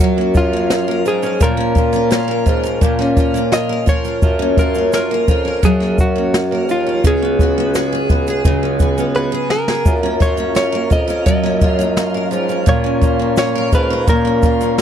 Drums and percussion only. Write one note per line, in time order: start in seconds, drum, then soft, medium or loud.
0.00 kick loud
0.34 kick loud
0.34 shaker medium
0.70 snare loud
0.70 shaker medium
1.05 shaker medium
1.23 shaker soft
1.41 kick loud
1.41 shaker medium
1.76 kick medium
1.76 shaker soft
1.93 shaker medium
2.11 snare loud
2.11 shaker medium
2.46 kick medium
2.46 shaker medium
2.65 shaker medium
2.82 kick loud
2.82 shaker medium
3.00 snare soft
3.17 kick loud
3.17 shaker medium
3.35 shaker medium
3.52 snare loud
3.52 shaker medium
3.87 kick loud
3.87 shaker medium
4.05 shaker soft
4.22 kick loud
4.22 shaker medium
4.57 kick loud
4.57 shaker soft
4.74 shaker medium
4.93 snare loud
4.93 shaker medium
5.28 kick medium
5.28 shaker medium
5.63 kick loud
5.63 shaker medium
5.81 snare soft
5.98 kick loud
5.98 shaker medium
6.34 snare loud
6.34 shaker medium
6.69 shaker medium
7.04 kick loud
7.04 shaker medium
7.39 kick loud
7.39 shaker soft
7.74 snare loud
7.74 shaker medium
8.09 kick loud
8.09 shaker medium
8.27 shaker medium
8.45 kick loud
8.45 shaker medium
8.79 kick medium
8.79 shaker medium
8.98 shaker medium
9.50 snare loud
9.68 snare loud
9.85 kick loud
9.85 shaker medium
10.21 kick loud
10.21 shaker soft
10.37 shaker medium
10.55 snare loud
10.55 shaker medium
10.91 kick loud
10.91 shaker medium
11.09 shaker medium
11.26 kick loud
11.26 shaker medium
11.44 snare soft
11.61 kick loud
11.61 shaker medium
11.80 shaker medium
11.97 snare loud
11.97 shaker medium
12.32 shaker medium
12.49 shaker soft
12.67 kick loud
12.67 shaker medium
13.02 kick loud
13.02 shaker soft
13.36 snare loud
13.36 shaker medium
13.72 kick loud
13.72 shaker medium
14.08 kick loud
14.08 shaker medium
14.42 kick loud
14.42 shaker medium
14.61 shaker medium
14.78 snare loud
14.78 shaker medium